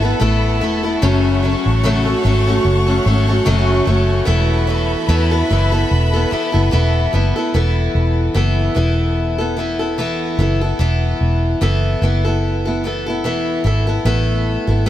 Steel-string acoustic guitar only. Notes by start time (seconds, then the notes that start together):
0.02 B3 E4 A4
0.20 A3 B3 E4 A4
0.61 A3 B3 E4 A4
0.83 B3 E4 A4
1.02 F#2 C#3 F#3 A3 C#4 A4
1.43 F#3 A3 C#4 A4
1.83 F#2 C#3 F#3 A3 C#4 A4
2.05 F#3 A3 C#4 A4
2.24 F#3 A3 C#4 A4
2.47 F#3 A3 C#4 A4
2.87 F#3 A3 C#4 A4
3.05 F#3 A3 C#4 A4
3.27 F#3 A3 C#4 A4
3.45 F#2 C#3 F#3 A3 C#4 A4
3.85 F#3 A3 C#4 A4
4.25 E3 B3 E4 A4
4.67 E3 B3 E4 A4
5.09 E3 B3 E4 A4
5.31 B3 E4 A4
5.50 E3 B3 E4 A4
5.72 B3 E4 A4
6.14 B3 E4 A4
6.31 E3 B3 E4 A4
6.52 B3 E4 A4
6.71 E3 B3 E4 A4
7.13 E3 B3 E4 A4
7.36 B3 E4 A4
7.54 E3 B3 E4 A4
8.34 E3 B3 E4 A4
8.75 E3 B3 E4 A4
9.38 B3 E4 A4
9.57 E3 B3 E4 A4
9.79 B3 E4 A4
9.98 E3 B3 E4 A4
10.39 E3 B3 E4 A4
10.61 B3 E4 A4
10.79 E3 B3 E4 A4
11.61 E3 B3 E4 A4
12.02 E3 B3 E4 A4
12.25 B3 E4 A4
12.65 B3 E4 A4
12.84 E3 B3 E4 A4
13.06 B3 E4 A4
13.24 E3 B3 E4 A4
13.64 E3 B3 E4 A4
13.87 B3 E4 A4
14.05 A3 B3 E4 A4
14.67 B3 E4 A4
14.86 A3 B3